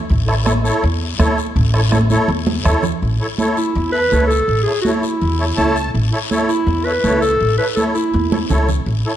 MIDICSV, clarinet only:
0, 0, Header, 1, 2, 480
1, 0, Start_track
1, 0, Key_signature, 3, "major"
1, 0, Tempo, 365186
1, 138, Time_signature, 4, 2, 24, 8
1, 12048, End_track
2, 0, Start_track
2, 0, Title_t, "Clarinet"
2, 0, Program_c, 0, 71
2, 4698, Note_on_c, 0, 64, 82
2, 5140, Note_off_c, 0, 64, 0
2, 5154, Note_on_c, 0, 71, 104
2, 5600, Note_off_c, 0, 71, 0
2, 5607, Note_on_c, 0, 69, 97
2, 6074, Note_off_c, 0, 69, 0
2, 6088, Note_on_c, 0, 68, 84
2, 6326, Note_off_c, 0, 68, 0
2, 6334, Note_on_c, 0, 66, 79
2, 6450, Note_off_c, 0, 66, 0
2, 6569, Note_on_c, 0, 64, 76
2, 7498, Note_off_c, 0, 64, 0
2, 8516, Note_on_c, 0, 64, 85
2, 9003, Note_on_c, 0, 71, 100
2, 9023, Note_off_c, 0, 64, 0
2, 9476, Note_off_c, 0, 71, 0
2, 9484, Note_on_c, 0, 69, 101
2, 9935, Note_off_c, 0, 69, 0
2, 9968, Note_on_c, 0, 71, 84
2, 10077, Note_off_c, 0, 71, 0
2, 10195, Note_on_c, 0, 69, 81
2, 10307, Note_off_c, 0, 69, 0
2, 10442, Note_on_c, 0, 64, 75
2, 11357, Note_off_c, 0, 64, 0
2, 12048, End_track
0, 0, End_of_file